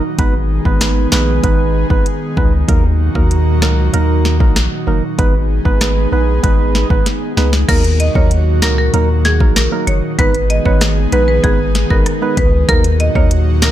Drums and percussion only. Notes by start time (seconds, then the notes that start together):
0.19 kick, closed hi-hat
0.65 kick
0.81 cross-stick, snare, closed hi-hat
1.12 cross-stick, snare
1.43 kick, closed hi-hat
1.90 kick
2.06 closed hi-hat
2.37 kick
2.69 kick, closed hi-hat
3.15 kick
3.31 closed hi-hat
3.62 cross-stick, snare
3.94 closed hi-hat
4.25 snare
4.40 kick
4.56 cross-stick, snare, closed hi-hat
5.19 kick, closed hi-hat
5.65 kick
5.81 cross-stick, snare, closed hi-hat
6.44 kick, closed hi-hat
6.75 snare
6.90 kick
7.06 snare, closed hi-hat
7.37 snare
7.53 snare
7.69 kick, closed hi-hat, crash
7.84 closed hi-hat
8.00 closed hi-hat
8.15 kick
8.31 closed hi-hat
8.62 cross-stick, snare, closed hi-hat
8.94 closed hi-hat
9.25 snare, closed hi-hat
9.40 kick
9.56 cross-stick, snare, closed hi-hat
9.87 closed hi-hat
10.19 kick, closed hi-hat
10.35 closed hi-hat
10.50 closed hi-hat
10.65 kick
10.81 cross-stick, snare, closed hi-hat
11.12 closed hi-hat
11.44 kick, closed hi-hat
11.75 snare, closed hi-hat
11.90 kick
12.06 cross-stick, closed hi-hat
12.37 kick, closed hi-hat
12.69 kick, closed hi-hat
12.84 closed hi-hat
13.00 closed hi-hat
13.15 kick
13.31 closed hi-hat
13.62 cross-stick, snare, closed hi-hat